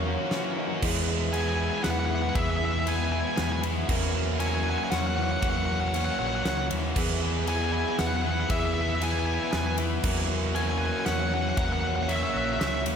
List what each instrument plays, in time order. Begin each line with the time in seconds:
Already playing: fingered electric bass E2, clean electric guitar E3 C#4, ambient pad E4 A#4 C#5 F#5
0.05 clean electric guitar A#3, distorted electric guitar C#4 F#4, vibraphone C#5
0.14 distorted electric guitar C#4 F#4
0.21 distorted electric guitar C#4 F#4
0.29 clean electric guitar E3, distorted electric guitar C#4 F#4, snare
0.36 distorted electric guitar C#4 F#4
0.45 distorted electric guitar C#4 F#4
0.51 distorted electric guitar C#4 F#4
0.57 clean electric guitar A#3, distorted electric guitar C#4 F#4, vibraphone D#5
0.67 distorted electric guitar C#4 F#4
0.74 distorted electric guitar C#4 F#4
0.81 fingered electric bass E2, distorted electric guitar E3 G#3 B3 E4 G#4, clean electric guitar E3, ambient pad G#4 B4 E5 B5, vibraphone G#4, kick, crash
1.07 distorted electric guitar G#3 B3 E4 G#4
1.33 distorted electric guitar E3 G#3 B3 E4 G#4, clean electric guitar B3, vibraphone G#4, lead electric guitar G#5, ride
1.41 lead electric guitar G#5
1.48 lead electric guitar G#5
1.55 clean electric guitar E4, lead electric guitar G#5
1.63 lead electric guitar G#5
1.70 lead electric guitar G#5
1.78 lead electric guitar G#5
1.83 fingered electric bass E2, distorted electric guitar E3 G#3 B3 E4 G#4, clean electric guitar B3, vibraphone B4, lead electric guitar F#5, snare, ride
1.90 lead electric guitar F#5
1.99 lead electric guitar F#5
2.05 distorted electric guitar G#4, lead electric guitar F#5
2.10 clean electric guitar E3, distorted electric guitar G#3 B3 E4
2.15 lead electric guitar F#5
2.22 lead electric guitar F#5
2.30 lead electric guitar F#5
2.34 fingered electric bass E2, distorted electric guitar E3 G#3 B3 E4 G#4, clean electric guitar E3, vibraphone G#4, lead electric guitar E5, kick, ride
2.42 lead electric guitar E5
2.51 lead electric guitar E5
2.57 lead electric guitar E5
2.61 distorted electric guitar G#3 B3 E4 G#4, vibraphone B4
2.65 lead electric guitar E5
2.72 lead electric guitar E5
2.80 lead electric guitar E5
2.86 distorted electric guitar E3 G#3 B3 E4 G#4, clean electric guitar B3, lead electric guitar G#5, ride
2.96 lead electric guitar G#5
3.05 lead electric guitar G#5
3.12 clean electric guitar E4, vibraphone B4, lead electric guitar G#5
3.20 lead electric guitar G#5
3.28 lead electric guitar G#5
3.36 fingered electric bass E2, distorted electric guitar E3 G#3 B3 E4 G#4, clean electric guitar B3, lead electric guitar G#5, snare, ride
3.43 lead electric guitar G#5
3.52 lead electric guitar G#5
3.62 clean electric guitar E3, distorted electric guitar G#3 B3 E4 G#4, vibraphone F#5, ride
3.86 fingered electric bass E2, clean electric guitar E3, distorted electric guitar F#3 A#3 C#4 F#4, ambient pad A#4 F#5 C#6, vibraphone A#4, kick, crash
4.14 distorted electric guitar A#3 C#4 F#4
4.39 distorted electric guitar F#3 A#3 C#4 F#4, clean electric guitar C#4, vibraphone A#4, lead electric guitar G#5, ride
4.48 lead electric guitar G#5
4.55 lead electric guitar G#5
4.64 clean electric guitar F#4, lead electric guitar G#5
4.69 lead electric guitar G#5
4.78 lead electric guitar G#5
4.84 lead electric guitar G#5
4.90 fingered electric bass E2, distorted electric guitar F#3 A#3 C#4 F#4, clean electric guitar C#4, vibraphone C#5, lead electric guitar F#5, snare, ride
4.99 lead electric guitar F#5
5.07 lead electric guitar F#5
5.16 clean electric guitar E3, distorted electric guitar A#3 C#4 F#4, lead electric guitar F#5
5.23 lead electric guitar F#5
5.32 lead electric guitar F#5
5.41 fingered electric bass E2, clean electric guitar E3, distorted electric guitar F#3 A#3 C#4 F#4, vibraphone A#4, lead electric guitar F#5, kick, ride
5.50 lead electric guitar F#5
5.57 lead electric guitar F#5
5.65 distorted electric guitar A#3 C#4 F#4, vibraphone C#5, lead electric guitar F#5
5.72 lead electric guitar F#5
5.80 lead electric guitar F#5
5.88 lead electric guitar F#5
5.92 distorted electric guitar F#3 A#3 C#4 F#4, clean electric guitar C#4, lead electric guitar F#5, ride
6.05 lead electric guitar F#5
6.11 lead electric guitar F#5
6.19 fingered electric bass A#1, clean electric guitar F#4, vibraphone C#5, lead electric guitar F#5
6.27 lead electric guitar F#5
6.35 lead electric guitar F#5
6.43 fingered electric bass C#2, distorted electric guitar F#3 A#3 C#4 F#4, clean electric guitar C#4, lead electric guitar F#5, snare, ride
6.50 lead electric guitar F#5
6.58 lead electric guitar F#5
6.70 fingered electric bass D#2, clean electric guitar E3, distorted electric guitar A#3 C#4 F#4, vibraphone F#5, ride
6.95 fingered electric bass E2, distorted electric guitar E3 B3 E4 G#4, clean electric guitar E3, vibraphone G#4, ambient pad B4 G#5 E6, kick, crash
7.21 distorted electric guitar B3 E4 G#4
7.47 distorted electric guitar E3 B3 E4 G#4, clean electric guitar B3, vibraphone G#4, lead electric guitar G#5, ride
7.56 lead electric guitar G#5
7.64 lead electric guitar G#5
7.72 clean electric guitar E4, lead electric guitar G#5
7.80 lead electric guitar G#5
7.88 lead electric guitar G#5
7.98 fingered electric bass E2, distorted electric guitar E3 B3 E4 G#4, clean electric guitar B3, vibraphone B4, lead electric guitar F#5, snare, ride
8.07 lead electric guitar F#5
8.16 lead electric guitar F#5
8.22 clean electric guitar E3, distorted electric guitar B3 E4 G#4, lead electric guitar F#5
8.31 lead electric guitar F#5
8.40 lead electric guitar F#5
8.49 fingered electric bass E2, distorted electric guitar E3 B3 E4 G#4, clean electric guitar E3, vibraphone G#4, lead electric guitar E5, kick, ride
8.59 lead electric guitar E5
8.65 lead electric guitar E5
8.74 distorted electric guitar B3 E4 G#4, vibraphone B4, lead electric guitar E5
8.81 lead electric guitar E5
8.89 lead electric guitar E5
8.95 lead electric guitar E5
9.01 distorted electric guitar E3 B3 E4 G#4, clean electric guitar B3, lead electric guitar G#5, ride
9.12 lead electric guitar G#5
9.19 lead electric guitar G#5
9.26 clean electric guitar E4, vibraphone B4, lead electric guitar G#5
9.34 lead electric guitar G#5
9.43 lead electric guitar G#5
9.51 fingered electric bass E2, distorted electric guitar E3 B3 E4 G#4, clean electric guitar B3, lead electric guitar G#5, snare, ride
9.59 lead electric guitar G#5
9.67 lead electric guitar G#5
9.78 clean electric guitar E3, distorted electric guitar B3 E4 G#4, vibraphone F#5, ride
10.02 fingered electric bass E2, clean electric guitar E3, distorted electric guitar F#3 A#3 C#4 F#4, vibraphone A#4, ambient pad C#5 F#5 A#5, kick, crash
10.29 distorted electric guitar A#3 C#4 F#4
10.54 distorted electric guitar F#3 A#3 C#4 F#4, clean electric guitar C#4, vibraphone A#4, lead electric guitar G#5, ride
10.62 lead electric guitar G#5
10.70 lead electric guitar G#5
10.78 clean electric guitar F#4, lead electric guitar G#5
10.86 lead electric guitar G#5
10.93 lead electric guitar G#5
11.00 lead electric guitar G#5
11.06 fingered electric bass E2, distorted electric guitar F#3 A#3 C#4 F#4, clean electric guitar C#4, vibraphone C#5, lead electric guitar F#5, snare, ride
11.12 lead electric guitar F#5
11.20 lead electric guitar F#5
11.27 clean electric guitar E3, lead electric guitar F#5
11.32 distorted electric guitar A#3 C#4 F#4, lead electric guitar F#5
11.42 lead electric guitar F#5
11.49 lead electric guitar F#5
11.56 fingered electric bass E2, clean electric guitar E3, distorted electric guitar F#3 A#3 C#4 F#4, vibraphone A#4, lead electric guitar F#5, kick, ride
11.65 lead electric guitar F#5
11.72 lead electric guitar F#5
11.80 distorted electric guitar F#4, vibraphone C#5, lead electric guitar F#5
11.84 distorted electric guitar A#3 C#4, lead electric guitar F#5
11.96 lead electric guitar F#5
12.03 lead electric guitar F#5
12.08 distorted electric guitar F#3 A#3 C#4 F#4, clean electric guitar C#4, lead electric guitar E5, ride
12.16 lead electric guitar E5
12.23 lead electric guitar E5
12.30 clean electric guitar F#4, lead electric guitar E5
12.35 fingered electric bass A#1, vibraphone C#5, lead electric guitar E5
12.45 lead electric guitar E5
12.52 lead electric guitar E5
12.59 fingered electric bass C#2, distorted electric guitar F#3 A#3 C#4 F#4, clean electric guitar C#4, lead electric guitar E5, snare, ride
12.67 lead electric guitar E5
12.74 lead electric guitar E5
12.85 fingered electric bass D#2, clean electric guitar E3, distorted electric guitar A#3 C#4 F#4, vibraphone F#5, ride